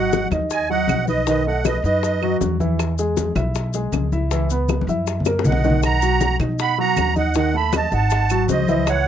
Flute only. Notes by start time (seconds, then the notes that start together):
Already playing: D#5
0.50 D#5
0.70 D#5
1.07 B4
1.27 B4
1.45 D#5
1.65 B4
1.84 B4
5.46 D#5
5.84 F#5
6.61 F#5
6.79 F#5
7.18 D#5
7.37 D#5
7.55 A5
7.75 D#5
7.92 F#5
8.49 C5
8.88 C#5